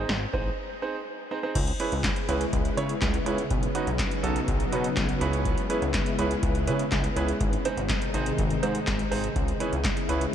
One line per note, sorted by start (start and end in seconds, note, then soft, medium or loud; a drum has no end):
0.00 0.11 C4 medium
0.00 0.11 D#4 medium
0.00 0.11 G#4 medium
0.00 0.11 C5 medium
0.09 0.26 G#1 loud
0.09 snare loud
0.33 0.50 A1 medium
0.33 0.47 C4 medium
0.33 0.47 D#4 medium
0.33 0.47 G#4 medium
0.33 0.47 C5 medium
0.33 kick medium
0.82 0.96 C4 medium
0.82 0.96 D#4 medium
0.82 0.96 G#4 medium
0.82 0.96 C5 medium
1.31 1.38 C4 medium
1.31 1.38 D#4 medium
1.31 1.38 G#4 medium
1.31 1.38 C5 medium
1.43 1.55 C4 medium
1.43 1.55 D#4 medium
1.43 1.55 G#4 medium
1.43 1.55 C5 medium
1.55 1.72 C#2 loud
1.55 7.37 C#3 medium
1.55 3.48 G#3 medium
1.55 7.37 B3 medium
1.55 3.48 E4 medium
1.55 kick loud
1.55 closed hi-hat medium
1.55 crash loud
1.68 closed hi-hat medium
1.80 1.93 C#4 medium
1.80 1.93 E4 medium
1.80 1.93 G#4 medium
1.80 1.93 B4 medium
1.80 closed hi-hat medium
1.92 2.09 C#2 loud
1.92 closed hi-hat soft
2.04 kick loud
2.04 snare loud
2.04 clap loud
2.04 closed hi-hat medium
2.16 closed hi-hat medium
2.29 2.46 C#2 loud
2.29 2.42 C#4 medium
2.29 2.42 E4 medium
2.29 2.42 G#4 medium
2.29 2.42 B4 loud
2.29 closed hi-hat medium
2.41 closed hi-hat medium
2.53 2.70 C#2 loud
2.53 kick loud
2.53 closed hi-hat medium
2.65 closed hi-hat medium
2.77 2.94 C#3 loud
2.77 2.91 C#4 medium
2.77 2.91 E4 medium
2.77 2.91 G#4 medium
2.77 2.91 C#5 medium
2.77 closed hi-hat medium
2.89 closed hi-hat medium
3.02 3.19 C#2 loud
3.02 kick loud
3.02 snare loud
3.02 clap medium
3.02 closed hi-hat medium
3.14 closed hi-hat medium
3.26 3.43 C#2 loud
3.26 3.40 C#4 medium
3.26 3.40 E4 medium
3.26 3.40 G#4 medium
3.26 3.40 B4 medium
3.26 closed hi-hat medium
3.38 closed hi-hat soft
3.50 3.68 B1 loud
3.50 5.20 F#3 medium
3.50 5.20 D#4 medium
3.50 kick loud
3.50 closed hi-hat medium
3.63 closed hi-hat medium
3.75 3.89 C#4 medium
3.75 3.89 D#4 medium
3.75 3.88 F#4 medium
3.75 3.89 B4 medium
3.75 closed hi-hat medium
3.87 4.04 B1 loud
3.87 closed hi-hat soft
3.99 kick loud
3.99 snare loud
3.99 clap loud
3.99 closed hi-hat medium
4.11 closed hi-hat medium
4.23 4.41 B1 loud
4.23 4.37 C#4 medium
4.23 4.37 D#4 medium
4.23 4.37 F#4 medium
4.23 4.37 A4 medium
4.23 closed hi-hat medium
4.36 closed hi-hat medium
4.48 4.65 B1 loud
4.48 kick loud
4.48 closed hi-hat medium
4.60 closed hi-hat medium
4.72 4.89 B2 loud
4.72 4.86 C#4 medium
4.72 4.86 D#4 medium
4.72 4.86 F#4 medium
4.72 4.86 B4 medium
4.72 closed hi-hat medium
4.84 closed hi-hat medium
4.97 5.14 B1 loud
4.97 kick loud
4.97 snare loud
4.97 clap medium
4.97 closed hi-hat medium
5.09 closed hi-hat medium
5.21 5.55 C#2 loud
5.21 7.39 G#3 medium
5.21 5.60 C#4 medium
5.21 5.60 E4 medium
5.21 7.38 E4 loud
5.21 5.60 G#4 medium
5.21 5.60 B4 loud
5.21 closed hi-hat medium
5.33 closed hi-hat soft
5.45 kick loud
5.45 closed hi-hat medium
5.58 closed hi-hat medium
5.70 5.84 C#4 medium
5.70 5.84 E4 medium
5.70 5.84 G#4 medium
5.70 5.84 B4 loud
5.70 closed hi-hat medium
5.82 5.99 C#2 medium
5.82 closed hi-hat soft
5.94 kick loud
5.94 snare loud
5.94 clap loud
5.94 closed hi-hat medium
6.06 closed hi-hat medium
6.19 6.36 C#2 medium
6.19 6.32 C#4 medium
6.19 6.32 E4 medium
6.19 6.32 G#4 medium
6.19 6.32 B4 loud
6.19 closed hi-hat medium
6.31 closed hi-hat medium
6.43 6.69 C#2 loud
6.43 kick loud
6.43 closed hi-hat medium
6.55 closed hi-hat medium
6.67 6.85 C#3 loud
6.67 6.81 C#4 medium
6.67 6.81 E4 medium
6.67 6.81 G#4 medium
6.67 6.81 B4 loud
6.67 closed hi-hat medium
6.79 closed hi-hat medium
6.92 7.09 C#2 loud
6.92 kick loud
6.92 snare loud
6.92 clap medium
6.92 closed hi-hat medium
7.04 closed hi-hat medium
7.16 7.33 C#2 loud
7.16 7.30 C#4 medium
7.16 7.30 E4 medium
7.16 7.30 G#4 medium
7.16 7.30 B4 medium
7.16 closed hi-hat medium
7.28 closed hi-hat soft
7.41 7.58 G#1 loud
7.41 9.34 C3 medium
7.41 9.34 D#3 medium
7.41 9.34 G#3 medium
7.41 9.34 D#4 medium
7.41 kick loud
7.41 closed hi-hat medium
7.53 closed hi-hat medium
7.65 7.79 C4 medium
7.65 7.79 D#4 medium
7.65 7.79 G#4 medium
7.65 7.79 C5 loud
7.65 closed hi-hat medium
7.77 7.94 G#1 medium
7.77 closed hi-hat soft
7.89 kick loud
7.89 snare loud
7.89 clap loud
7.89 closed hi-hat medium
8.02 closed hi-hat medium
8.14 8.31 G#1 loud
8.14 8.28 C4 medium
8.14 8.28 D#4 medium
8.14 8.28 G#4 medium
8.14 8.28 C5 loud
8.14 closed hi-hat medium
8.26 closed hi-hat medium
8.38 8.55 G#1 loud
8.38 kick loud
8.38 closed hi-hat medium
8.50 closed hi-hat medium
8.63 8.80 G#2 loud
8.63 8.76 C4 medium
8.63 8.76 D#4 medium
8.63 8.76 G#4 medium
8.63 8.76 C5 medium
8.63 closed hi-hat medium
8.75 closed hi-hat medium
8.87 9.04 G#1 loud
8.87 kick loud
8.87 snare loud
8.87 clap medium
8.87 closed hi-hat medium
8.99 closed hi-hat medium
9.11 9.29 G#1 medium
9.11 9.25 C4 medium
9.11 9.25 D#4 medium
9.11 9.25 G#4 medium
9.11 9.25 C5 medium
9.11 open hi-hat medium
9.24 closed hi-hat soft
9.36 9.53 C#2 loud
9.36 10.35 C#3 medium
9.36 10.35 G#3 medium
9.36 10.35 B3 medium
9.36 10.35 E4 medium
9.36 kick loud
9.36 closed hi-hat medium
9.48 closed hi-hat medium
9.60 9.74 C#4 medium
9.60 9.74 E4 medium
9.60 9.74 G#4 medium
9.60 9.74 B4 medium
9.60 closed hi-hat medium
9.72 9.90 C#2 medium
9.72 closed hi-hat soft
9.84 kick loud
9.84 snare loud
9.84 clap loud
9.84 closed hi-hat medium
9.97 closed hi-hat medium
10.09 10.26 C#2 loud
10.09 10.23 C#4 medium
10.09 10.23 E4 medium
10.09 10.23 G#4 medium
10.09 10.23 B4 loud
10.09 closed hi-hat medium
10.21 closed hi-hat medium